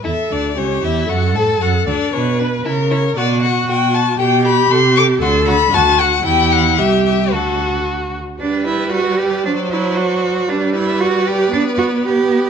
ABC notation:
X:1
M:2/4
L:1/8
Q:1/4=116
K:Bm
V:1 name="Violin"
e d c e | f a f d | c B ^A c | d f g a |
[K:G] g b c' d' | c' b a f | g f e e | A2 z2 |
d4- | d4 | d4- | d4 |]
V:2 name="Viola"
A2 G2 | A4 | B2 ^A2 | F4 |
[K:G] G4 | A2 F2 | E2 G2 | F3 z |
G,4 | F,4 | G,4 | B,4 |]
V:3 name="Violin"
E D C E | F A F D | D D E E | F F F F |
[K:G] G G A A | F F F F | G2 G2 | F3 z |
B4 | c4 | B4- | B4 |]
V:4 name="Cello" clef=bass
E,, D,, C,, E,, | F,, A,, F,, D,, | B,,2 C,2 | B,,2 B,,2 |
[K:G] B,,2 C,2 | D,,2 D,,2 | E,,2 C,,2 | D,,3 z |
D E F G | D E F2 | D E F G | D F G2 |]